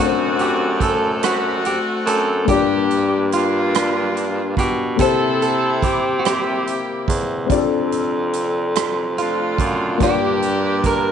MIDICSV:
0, 0, Header, 1, 6, 480
1, 0, Start_track
1, 0, Key_signature, -1, "major"
1, 0, Tempo, 835655
1, 1423, Time_signature, 6, 3, 24, 8
1, 6386, End_track
2, 0, Start_track
2, 0, Title_t, "Clean electric guitar"
2, 0, Program_c, 0, 27
2, 0, Note_on_c, 0, 66, 77
2, 234, Note_off_c, 0, 66, 0
2, 236, Note_on_c, 0, 67, 74
2, 476, Note_off_c, 0, 67, 0
2, 479, Note_on_c, 0, 69, 74
2, 714, Note_off_c, 0, 69, 0
2, 717, Note_on_c, 0, 66, 72
2, 955, Note_off_c, 0, 66, 0
2, 957, Note_on_c, 0, 67, 69
2, 1020, Note_off_c, 0, 67, 0
2, 1190, Note_on_c, 0, 69, 75
2, 1410, Note_off_c, 0, 69, 0
2, 1429, Note_on_c, 0, 67, 75
2, 1914, Note_off_c, 0, 67, 0
2, 1916, Note_on_c, 0, 65, 67
2, 2638, Note_off_c, 0, 65, 0
2, 2640, Note_on_c, 0, 67, 68
2, 2875, Note_off_c, 0, 67, 0
2, 2878, Note_on_c, 0, 69, 82
2, 3109, Note_off_c, 0, 69, 0
2, 3116, Note_on_c, 0, 69, 68
2, 3351, Note_off_c, 0, 69, 0
2, 3353, Note_on_c, 0, 67, 63
2, 3554, Note_off_c, 0, 67, 0
2, 3558, Note_on_c, 0, 66, 48
2, 3591, Note_off_c, 0, 66, 0
2, 3595, Note_on_c, 0, 67, 62
2, 4107, Note_off_c, 0, 67, 0
2, 5275, Note_on_c, 0, 65, 64
2, 5759, Note_off_c, 0, 65, 0
2, 5761, Note_on_c, 0, 67, 79
2, 6237, Note_off_c, 0, 67, 0
2, 6239, Note_on_c, 0, 70, 79
2, 6386, Note_off_c, 0, 70, 0
2, 6386, End_track
3, 0, Start_track
3, 0, Title_t, "Saxophone section"
3, 0, Program_c, 1, 65
3, 0, Note_on_c, 1, 57, 60
3, 0, Note_on_c, 1, 60, 61
3, 0, Note_on_c, 1, 66, 89
3, 469, Note_off_c, 1, 66, 0
3, 470, Note_on_c, 1, 69, 75
3, 682, Note_off_c, 1, 60, 0
3, 683, Note_off_c, 1, 57, 0
3, 706, Note_off_c, 1, 69, 0
3, 707, Note_on_c, 1, 57, 60
3, 708, Note_on_c, 1, 60, 59
3, 709, Note_on_c, 1, 66, 80
3, 1186, Note_off_c, 1, 66, 0
3, 1195, Note_on_c, 1, 69, 82
3, 1402, Note_off_c, 1, 57, 0
3, 1403, Note_off_c, 1, 60, 0
3, 1429, Note_off_c, 1, 69, 0
3, 1440, Note_on_c, 1, 62, 65
3, 1441, Note_on_c, 1, 58, 63
3, 1442, Note_on_c, 1, 67, 89
3, 1890, Note_off_c, 1, 67, 0
3, 1912, Note_off_c, 1, 62, 0
3, 1913, Note_off_c, 1, 58, 0
3, 1919, Note_on_c, 1, 62, 57
3, 1920, Note_on_c, 1, 58, 57
3, 1920, Note_on_c, 1, 65, 81
3, 2693, Note_off_c, 1, 58, 0
3, 2693, Note_off_c, 1, 62, 0
3, 2716, Note_off_c, 1, 65, 0
3, 2883, Note_on_c, 1, 64, 65
3, 2883, Note_on_c, 1, 69, 85
3, 3331, Note_off_c, 1, 69, 0
3, 3358, Note_on_c, 1, 67, 69
3, 3571, Note_off_c, 1, 64, 0
3, 3591, Note_off_c, 1, 67, 0
3, 3598, Note_on_c, 1, 67, 64
3, 3601, Note_on_c, 1, 58, 44
3, 3603, Note_on_c, 1, 64, 47
3, 4108, Note_off_c, 1, 67, 0
3, 4290, Note_off_c, 1, 58, 0
3, 4291, Note_off_c, 1, 64, 0
3, 5285, Note_on_c, 1, 57, 46
3, 5286, Note_on_c, 1, 62, 47
3, 5290, Note_on_c, 1, 65, 65
3, 5733, Note_off_c, 1, 57, 0
3, 5733, Note_off_c, 1, 62, 0
3, 5735, Note_off_c, 1, 65, 0
3, 5761, Note_on_c, 1, 62, 59
3, 5763, Note_on_c, 1, 58, 62
3, 5764, Note_on_c, 1, 67, 86
3, 6235, Note_off_c, 1, 67, 0
3, 6239, Note_on_c, 1, 70, 82
3, 6386, Note_off_c, 1, 58, 0
3, 6386, Note_off_c, 1, 62, 0
3, 6386, Note_off_c, 1, 70, 0
3, 6386, End_track
4, 0, Start_track
4, 0, Title_t, "Upright piano"
4, 0, Program_c, 2, 0
4, 0, Note_on_c, 2, 57, 47
4, 0, Note_on_c, 2, 60, 43
4, 0, Note_on_c, 2, 62, 41
4, 0, Note_on_c, 2, 78, 44
4, 32, Note_on_c, 2, 72, 54
4, 87, Control_c, 2, 64, 127
4, 1389, Note_off_c, 2, 57, 0
4, 1392, Note_off_c, 2, 60, 0
4, 1396, Note_off_c, 2, 62, 0
4, 1401, Note_off_c, 2, 78, 0
4, 1405, Note_on_c, 2, 58, 49
4, 1417, Note_on_c, 2, 62, 43
4, 1422, Note_on_c, 2, 65, 45
4, 1423, Note_on_c, 2, 43, 48
4, 1425, Note_off_c, 2, 72, 0
4, 1432, Control_c, 2, 64, 0
4, 1432, Note_on_c, 2, 67, 45
4, 1440, Note_on_c, 2, 74, 53
4, 1535, Control_c, 2, 64, 127
4, 2120, Note_off_c, 2, 43, 0
4, 2832, Note_off_c, 2, 58, 0
4, 2837, Note_off_c, 2, 62, 0
4, 2840, Note_off_c, 2, 65, 0
4, 2845, Note_off_c, 2, 67, 0
4, 2849, Note_off_c, 2, 74, 0
4, 2850, Note_on_c, 2, 58, 48
4, 2858, Note_on_c, 2, 60, 43
4, 2865, Note_on_c, 2, 48, 50
4, 2867, Note_on_c, 2, 64, 42
4, 2872, Control_c, 2, 64, 0
4, 2877, Note_on_c, 2, 67, 45
4, 2883, Note_on_c, 2, 72, 54
4, 2978, Control_c, 2, 64, 127
4, 3562, Note_off_c, 2, 48, 0
4, 4274, Note_off_c, 2, 58, 0
4, 4278, Note_off_c, 2, 60, 0
4, 4283, Note_off_c, 2, 64, 0
4, 4286, Note_on_c, 2, 60, 53
4, 4288, Note_off_c, 2, 67, 0
4, 4291, Note_off_c, 2, 72, 0
4, 4295, Note_on_c, 2, 62, 47
4, 4302, Note_on_c, 2, 65, 51
4, 4312, Control_c, 2, 64, 0
4, 4312, Note_on_c, 2, 67, 38
4, 4319, Note_on_c, 2, 74, 62
4, 4346, Note_off_c, 2, 67, 0
4, 4347, Note_on_c, 2, 69, 50
4, 4397, Control_c, 2, 64, 127
4, 5713, Note_off_c, 2, 60, 0
4, 5718, Note_off_c, 2, 62, 0
4, 5721, Note_off_c, 2, 65, 0
4, 5730, Note_off_c, 2, 74, 0
4, 5731, Note_on_c, 2, 58, 48
4, 5739, Note_on_c, 2, 62, 47
4, 5744, Note_off_c, 2, 69, 0
4, 5745, Note_on_c, 2, 65, 44
4, 5746, Note_on_c, 2, 43, 46
4, 5753, Control_c, 2, 64, 0
4, 5757, Note_on_c, 2, 67, 40
4, 5763, Note_on_c, 2, 74, 54
4, 5862, Control_c, 2, 64, 127
4, 6386, Note_off_c, 2, 43, 0
4, 6386, Note_off_c, 2, 58, 0
4, 6386, Note_off_c, 2, 62, 0
4, 6386, Note_off_c, 2, 65, 0
4, 6386, Note_off_c, 2, 67, 0
4, 6386, Note_off_c, 2, 74, 0
4, 6386, End_track
5, 0, Start_track
5, 0, Title_t, "Baritone saxophone"
5, 0, Program_c, 3, 67
5, 0, Note_on_c, 3, 42, 73
5, 1004, Note_off_c, 3, 42, 0
5, 1181, Note_on_c, 3, 42, 79
5, 1403, Note_off_c, 3, 42, 0
5, 1424, Note_on_c, 3, 43, 79
5, 2601, Note_off_c, 3, 43, 0
5, 2625, Note_on_c, 3, 47, 68
5, 2845, Note_off_c, 3, 47, 0
5, 2867, Note_on_c, 3, 48, 80
5, 3887, Note_off_c, 3, 48, 0
5, 4067, Note_on_c, 3, 40, 64
5, 4286, Note_off_c, 3, 40, 0
5, 4308, Note_on_c, 3, 41, 78
5, 5484, Note_off_c, 3, 41, 0
5, 5507, Note_on_c, 3, 42, 71
5, 5727, Note_off_c, 3, 42, 0
5, 5747, Note_on_c, 3, 43, 75
5, 6386, Note_off_c, 3, 43, 0
5, 6386, End_track
6, 0, Start_track
6, 0, Title_t, "Drums"
6, 224, Note_on_c, 9, 42, 38
6, 282, Note_off_c, 9, 42, 0
6, 462, Note_on_c, 9, 36, 64
6, 465, Note_on_c, 9, 42, 56
6, 519, Note_off_c, 9, 36, 0
6, 522, Note_off_c, 9, 42, 0
6, 705, Note_on_c, 9, 42, 78
6, 712, Note_on_c, 9, 37, 88
6, 762, Note_off_c, 9, 42, 0
6, 769, Note_off_c, 9, 37, 0
6, 947, Note_on_c, 9, 42, 41
6, 1005, Note_off_c, 9, 42, 0
6, 1189, Note_on_c, 9, 42, 58
6, 1246, Note_off_c, 9, 42, 0
6, 1423, Note_on_c, 9, 42, 70
6, 1424, Note_on_c, 9, 36, 80
6, 1480, Note_off_c, 9, 42, 0
6, 1481, Note_off_c, 9, 36, 0
6, 1669, Note_on_c, 9, 42, 35
6, 1727, Note_off_c, 9, 42, 0
6, 1908, Note_on_c, 9, 42, 56
6, 1966, Note_off_c, 9, 42, 0
6, 2151, Note_on_c, 9, 42, 76
6, 2158, Note_on_c, 9, 37, 90
6, 2208, Note_off_c, 9, 42, 0
6, 2215, Note_off_c, 9, 37, 0
6, 2393, Note_on_c, 9, 42, 39
6, 2451, Note_off_c, 9, 42, 0
6, 2624, Note_on_c, 9, 36, 68
6, 2632, Note_on_c, 9, 42, 59
6, 2682, Note_off_c, 9, 36, 0
6, 2690, Note_off_c, 9, 42, 0
6, 2865, Note_on_c, 9, 42, 71
6, 2866, Note_on_c, 9, 36, 74
6, 2922, Note_off_c, 9, 42, 0
6, 2924, Note_off_c, 9, 36, 0
6, 3113, Note_on_c, 9, 42, 39
6, 3171, Note_off_c, 9, 42, 0
6, 3346, Note_on_c, 9, 36, 67
6, 3348, Note_on_c, 9, 42, 50
6, 3403, Note_off_c, 9, 36, 0
6, 3406, Note_off_c, 9, 42, 0
6, 3590, Note_on_c, 9, 42, 73
6, 3597, Note_on_c, 9, 37, 90
6, 3648, Note_off_c, 9, 42, 0
6, 3655, Note_off_c, 9, 37, 0
6, 3833, Note_on_c, 9, 42, 40
6, 3891, Note_off_c, 9, 42, 0
6, 4066, Note_on_c, 9, 36, 71
6, 4074, Note_on_c, 9, 42, 60
6, 4124, Note_off_c, 9, 36, 0
6, 4132, Note_off_c, 9, 42, 0
6, 4307, Note_on_c, 9, 36, 80
6, 4308, Note_on_c, 9, 42, 69
6, 4365, Note_off_c, 9, 36, 0
6, 4365, Note_off_c, 9, 42, 0
6, 4550, Note_on_c, 9, 42, 36
6, 4607, Note_off_c, 9, 42, 0
6, 4787, Note_on_c, 9, 42, 53
6, 4844, Note_off_c, 9, 42, 0
6, 5028, Note_on_c, 9, 42, 77
6, 5035, Note_on_c, 9, 37, 92
6, 5086, Note_off_c, 9, 42, 0
6, 5093, Note_off_c, 9, 37, 0
6, 5274, Note_on_c, 9, 42, 39
6, 5331, Note_off_c, 9, 42, 0
6, 5506, Note_on_c, 9, 36, 71
6, 5511, Note_on_c, 9, 42, 59
6, 5563, Note_off_c, 9, 36, 0
6, 5568, Note_off_c, 9, 42, 0
6, 5746, Note_on_c, 9, 42, 69
6, 5747, Note_on_c, 9, 36, 81
6, 5804, Note_off_c, 9, 36, 0
6, 5804, Note_off_c, 9, 42, 0
6, 5987, Note_on_c, 9, 42, 36
6, 6045, Note_off_c, 9, 42, 0
6, 6224, Note_on_c, 9, 42, 53
6, 6225, Note_on_c, 9, 36, 64
6, 6282, Note_off_c, 9, 42, 0
6, 6283, Note_off_c, 9, 36, 0
6, 6386, End_track
0, 0, End_of_file